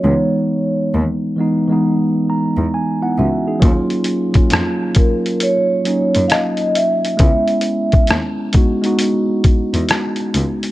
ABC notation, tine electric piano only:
X:1
M:4/4
L:1/16
Q:"Swing 16ths" 1/4=67
K:Dbdor
V:1 name="Tine electric piano"
z8 z2 b2 a [CFg] [DGf] [EA]- | [EA] z12 z3 | z16 |]
V:2 name="Tine electric piano"
[F,A,CE]4 z2 [F,A,CE] [F,A,CE]4- [F,A,CE] z4 | [G,B,D=F]2 z [G,B,DF]2 z [G,B,DF]2 z2 [G,B,DE]4 z2 | [A,CDF]4 z2 [A,CEG] [A,CEG]4- [A,CEG] z4 |]